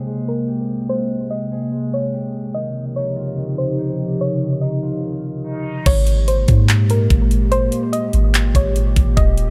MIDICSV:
0, 0, Header, 1, 6, 480
1, 0, Start_track
1, 0, Key_signature, -4, "major"
1, 0, Tempo, 413793
1, 1038, Time_signature, 4, 2, 24, 8
1, 11022, End_track
2, 0, Start_track
2, 0, Title_t, "Synth pluck"
2, 0, Program_c, 0, 84
2, 0, Note_on_c, 0, 72, 75
2, 276, Note_off_c, 0, 72, 0
2, 330, Note_on_c, 0, 70, 77
2, 553, Note_off_c, 0, 70, 0
2, 1037, Note_on_c, 0, 72, 123
2, 1489, Note_off_c, 0, 72, 0
2, 1513, Note_on_c, 0, 75, 96
2, 2193, Note_off_c, 0, 75, 0
2, 2246, Note_on_c, 0, 73, 81
2, 2471, Note_off_c, 0, 73, 0
2, 2951, Note_on_c, 0, 75, 102
2, 3406, Note_off_c, 0, 75, 0
2, 3435, Note_on_c, 0, 73, 85
2, 4113, Note_off_c, 0, 73, 0
2, 4154, Note_on_c, 0, 72, 75
2, 4384, Note_off_c, 0, 72, 0
2, 4882, Note_on_c, 0, 73, 100
2, 5332, Note_off_c, 0, 73, 0
2, 5351, Note_on_c, 0, 75, 75
2, 6269, Note_off_c, 0, 75, 0
2, 6801, Note_on_c, 0, 73, 110
2, 7251, Note_off_c, 0, 73, 0
2, 7283, Note_on_c, 0, 72, 76
2, 7958, Note_off_c, 0, 72, 0
2, 8009, Note_on_c, 0, 70, 84
2, 8232, Note_off_c, 0, 70, 0
2, 8719, Note_on_c, 0, 72, 120
2, 9170, Note_off_c, 0, 72, 0
2, 9195, Note_on_c, 0, 75, 100
2, 9873, Note_off_c, 0, 75, 0
2, 9927, Note_on_c, 0, 73, 82
2, 10151, Note_off_c, 0, 73, 0
2, 10634, Note_on_c, 0, 75, 104
2, 11022, Note_off_c, 0, 75, 0
2, 11022, End_track
3, 0, Start_track
3, 0, Title_t, "Clean electric guitar"
3, 0, Program_c, 1, 27
3, 0, Note_on_c, 1, 67, 90
3, 0, Note_on_c, 1, 68, 90
3, 77, Note_on_c, 1, 56, 83
3, 545, Note_off_c, 1, 67, 0
3, 559, Note_on_c, 1, 67, 92
3, 1029, Note_off_c, 1, 56, 0
3, 1043, Note_on_c, 1, 56, 88
3, 1278, Note_off_c, 1, 68, 0
3, 1503, Note_off_c, 1, 67, 0
3, 1517, Note_on_c, 1, 67, 82
3, 1763, Note_on_c, 1, 68, 85
3, 1979, Note_off_c, 1, 56, 0
3, 1993, Note_on_c, 1, 56, 94
3, 2467, Note_off_c, 1, 67, 0
3, 2481, Note_on_c, 1, 67, 83
3, 2956, Note_off_c, 1, 56, 0
3, 2960, Note_off_c, 1, 67, 0
3, 2961, Note_off_c, 1, 68, 0
3, 2961, Note_on_c, 1, 51, 89
3, 3441, Note_on_c, 1, 63, 90
3, 3669, Note_on_c, 1, 65, 81
3, 3903, Note_off_c, 1, 51, 0
3, 3917, Note_on_c, 1, 51, 90
3, 4382, Note_off_c, 1, 63, 0
3, 4396, Note_on_c, 1, 63, 89
3, 4869, Note_off_c, 1, 51, 0
3, 4883, Note_on_c, 1, 51, 83
3, 5114, Note_off_c, 1, 65, 0
3, 5347, Note_off_c, 1, 63, 0
3, 5361, Note_on_c, 1, 63, 84
3, 5601, Note_on_c, 1, 65, 89
3, 5820, Note_off_c, 1, 51, 0
3, 5834, Note_on_c, 1, 51, 81
3, 6301, Note_off_c, 1, 63, 0
3, 6315, Note_on_c, 1, 63, 84
3, 6796, Note_off_c, 1, 51, 0
3, 6797, Note_off_c, 1, 63, 0
3, 6800, Note_off_c, 1, 65, 0
3, 11022, End_track
4, 0, Start_track
4, 0, Title_t, "Analog synth pad"
4, 0, Program_c, 2, 89
4, 0, Note_on_c, 2, 48, 76
4, 0, Note_on_c, 2, 56, 72
4, 0, Note_on_c, 2, 58, 73
4, 0, Note_on_c, 2, 79, 87
4, 2911, Note_off_c, 2, 79, 0
4, 2919, Note_off_c, 2, 48, 0
4, 2919, Note_off_c, 2, 56, 0
4, 2919, Note_off_c, 2, 58, 0
4, 2959, Note_on_c, 2, 48, 73
4, 2959, Note_on_c, 2, 49, 80
4, 2959, Note_on_c, 2, 53, 72
4, 2959, Note_on_c, 2, 63, 72
4, 2959, Note_on_c, 2, 67, 89
4, 6760, Note_off_c, 2, 48, 0
4, 6760, Note_off_c, 2, 49, 0
4, 6760, Note_off_c, 2, 53, 0
4, 6760, Note_off_c, 2, 63, 0
4, 6760, Note_off_c, 2, 67, 0
4, 6796, Note_on_c, 2, 56, 73
4, 6796, Note_on_c, 2, 58, 72
4, 6796, Note_on_c, 2, 67, 86
4, 6798, Note_on_c, 2, 46, 84
4, 10599, Note_off_c, 2, 56, 0
4, 10599, Note_off_c, 2, 58, 0
4, 10638, Note_on_c, 2, 53, 74
4, 10638, Note_on_c, 2, 61, 75
4, 11022, Note_off_c, 2, 46, 0
4, 11022, Note_off_c, 2, 53, 0
4, 11022, Note_off_c, 2, 61, 0
4, 11022, Note_off_c, 2, 67, 0
4, 11022, End_track
5, 0, Start_track
5, 0, Title_t, "808-style bass"
5, 0, Program_c, 3, 38
5, 6800, Note_on_c, 3, 32, 120
5, 7491, Note_off_c, 3, 32, 0
5, 7521, Note_on_c, 3, 44, 108
5, 8211, Note_off_c, 3, 44, 0
5, 8241, Note_on_c, 3, 32, 107
5, 8931, Note_off_c, 3, 32, 0
5, 9439, Note_on_c, 3, 32, 101
5, 9900, Note_off_c, 3, 32, 0
5, 9916, Note_on_c, 3, 32, 104
5, 10378, Note_off_c, 3, 32, 0
5, 10398, Note_on_c, 3, 32, 98
5, 10629, Note_off_c, 3, 32, 0
5, 10639, Note_on_c, 3, 27, 114
5, 11022, Note_off_c, 3, 27, 0
5, 11022, End_track
6, 0, Start_track
6, 0, Title_t, "Drums"
6, 6799, Note_on_c, 9, 42, 68
6, 6799, Note_on_c, 9, 49, 90
6, 6800, Note_on_c, 9, 36, 121
6, 6915, Note_off_c, 9, 42, 0
6, 6915, Note_off_c, 9, 49, 0
6, 6916, Note_off_c, 9, 36, 0
6, 7037, Note_on_c, 9, 42, 74
6, 7153, Note_off_c, 9, 42, 0
6, 7283, Note_on_c, 9, 42, 75
6, 7399, Note_off_c, 9, 42, 0
6, 7516, Note_on_c, 9, 42, 70
6, 7522, Note_on_c, 9, 36, 100
6, 7632, Note_off_c, 9, 42, 0
6, 7638, Note_off_c, 9, 36, 0
6, 7759, Note_on_c, 9, 42, 84
6, 7762, Note_on_c, 9, 39, 101
6, 7875, Note_off_c, 9, 42, 0
6, 7878, Note_off_c, 9, 39, 0
6, 8000, Note_on_c, 9, 42, 75
6, 8116, Note_off_c, 9, 42, 0
6, 8239, Note_on_c, 9, 42, 73
6, 8241, Note_on_c, 9, 36, 99
6, 8355, Note_off_c, 9, 42, 0
6, 8357, Note_off_c, 9, 36, 0
6, 8479, Note_on_c, 9, 42, 72
6, 8595, Note_off_c, 9, 42, 0
6, 8719, Note_on_c, 9, 42, 65
6, 8835, Note_off_c, 9, 42, 0
6, 8955, Note_on_c, 9, 42, 71
6, 9071, Note_off_c, 9, 42, 0
6, 9200, Note_on_c, 9, 42, 73
6, 9316, Note_off_c, 9, 42, 0
6, 9434, Note_on_c, 9, 42, 68
6, 9550, Note_off_c, 9, 42, 0
6, 9678, Note_on_c, 9, 42, 89
6, 9681, Note_on_c, 9, 39, 103
6, 9794, Note_off_c, 9, 42, 0
6, 9797, Note_off_c, 9, 39, 0
6, 9917, Note_on_c, 9, 36, 88
6, 9920, Note_on_c, 9, 42, 77
6, 10033, Note_off_c, 9, 36, 0
6, 10036, Note_off_c, 9, 42, 0
6, 10159, Note_on_c, 9, 42, 73
6, 10275, Note_off_c, 9, 42, 0
6, 10397, Note_on_c, 9, 42, 70
6, 10399, Note_on_c, 9, 36, 93
6, 10513, Note_off_c, 9, 42, 0
6, 10515, Note_off_c, 9, 36, 0
6, 10638, Note_on_c, 9, 42, 69
6, 10639, Note_on_c, 9, 36, 118
6, 10754, Note_off_c, 9, 42, 0
6, 10755, Note_off_c, 9, 36, 0
6, 10875, Note_on_c, 9, 42, 74
6, 10991, Note_off_c, 9, 42, 0
6, 11022, End_track
0, 0, End_of_file